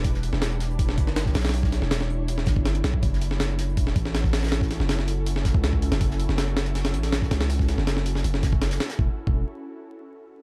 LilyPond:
<<
  \new Staff \with { instrumentName = "Ambient pad" } { \time 4/4 \key e \dorian \tempo 4 = 161 << { <d' g' cis''>1~ | <d' g' cis''>1 | <cis' fis' a'>1~ | <cis' fis' a'>1~ |
<cis' fis' a'>1~ | <cis' fis' a'>1 | r1 | } \\ { e'1~ | e'1~ | e'1~ | e'1~ |
e'1~ | e'1 | r1 | } >> }
  \new Staff \with { instrumentName = "808-style bass" } { \clef bass \time 4/4 \key e \dorian e,,8. e,,4.~ e,,16 g,,4 b,,8~ | b,,8. e,,4.~ e,,16 g,,4 b,,8 | fis,,2 e,,8 a,,4.~ | a,,8. fis,,2 cis,4 fis,,16~ |
fis,,8. fis,,4.~ fis,,16 a,,4 cis,8~ | cis,8. fis,,4~ fis,,16 fis,,4. r8 | e,,16 r8 e,,8 r2 r8. | }
  \new DrumStaff \with { instrumentName = "Drums" } \drummode { \time 4/4 <hh hho bd>16 sn16 <hh hho>16 sn16 <hh hho sn>16 hh16 <hh hho sn>16 hh16 <hh hho bd>16 sn16 <hh hho bd>16 sn16 <hh hho sn>16 <bd sn>16 <hh hho sn>32 <hh sn>32 <hh hho sn>32 <hho sn>32 | <hh hho>16 <bd sn>16 <hh hho sn>16 sn16 <hh hho sn>16 <hh sn>16 hh8 <hh hho>16 sn16 <hh hho bd sn>16 bd16 <hh hho sn>16 hh16 <hh hho sn>16 bd16 | <hh hho bd>16 sn16 <hh hho>16 sn16 <hh hho sn>16 hh16 <hh hho sn>16 hh16 <hh hho bd>16 sn16 <hh hho bd>16 sn16 <hh hho sn>16 <bd sn>16 <hh hho sn>32 <hh sn>32 <hh sn>32 <hh sn>32 | <hh hho sn>16 <bd sn>16 <hh hho sn>16 sn16 <hh hho sn>16 sn16 <hh hho>8 <hh hho>16 sn16 <hh hho bd sn>16 bd16 <hh hho sn>16 bd16 <hh hho>16 <hho sn>16 |
<hh hho bd>16 sn16 <hh hho>16 sn16 <hh hho sn>16 hh16 <hh hho sn>16 hh16 <hh hho sn>16 <hho sn>16 hh16 <hho sn>16 <hh hho sn>16 <bd sn>16 <hh hho sn>16 <hho sn>16 | <hh hho>16 <bd sn>16 <hh hho sn>16 sn16 <hh hho sn>16 <hh sn>16 <hh hho>16 sn16 <hh hho>16 sn16 <hh hho bd sn>16 bd16 <hh hho sn>16 <hh sn>16 <hh hho sn>16 <hh sn>16 | bd8. bd16 r4 r4 r4 | }
>>